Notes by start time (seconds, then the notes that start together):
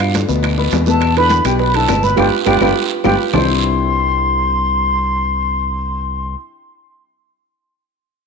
Already playing: G2 B2 B3 F4 B4 F5
0.00 high bongo, high conga, high timbale, claves
0.14 D3 D4 F4, high bongo, high conga, high timbale, low timbale, short guiro
0.28 D2 B2 B3 B4, high bongo, high conga, short guiro
0.43 high bongo, high conga, high timbale, long guiro, claves
0.58 B2 B3 B4, high conga
0.71 E2, high bongo, low bongo, high conga, high timbale, low timbale, short guiro
0.86 B2 B3 A4 B4 A5, high bongo, high conga, short guiro
1.01 high bongo, high conga, high timbale, long guiro, claves
1.16 D3 D4 E4 B4 B5, high bongo, high conga, high timbale
1.30 high bongo, high conga, high timbale, low timbale, short guiro
1.45 B1 B2 B3 G4 B4 G5, high bongo, high conga, high timbale, short guiro, claves
1.59 B4 B5, high bongo, high conga, long guiro
1.74 D3 D4 E4 A4 A5, high bongo, high conga, high timbale
1.88 G1 B2 B3 B4, high bongo, low bongo, high conga, high timbale, low timbale, short guiro, claves
2.03 B4 B5, high conga, short guiro
2.17 G1 G3 B3 D4 F4 G4 B4 G5, high bongo, high conga, high timbale, long guiro, claves
2.46 G1 G3 B3 D4 F4 G4 B4 G5, high bongo, high conga, high timbale, long guiro, claves
2.60 G1 G3 B3 D4 F4 G4 B4 G5, high bongo, high conga, high timbale, long guiro, claves
3.04 G1 G3 B3 D4 F4 G4 B4 G5, high bongo, high conga, high timbale, long guiro, claves
3.33 C2 C3 G3 C4 D4 E4 C5 C6, low bongo, low conga, low timbale, long guiro, claves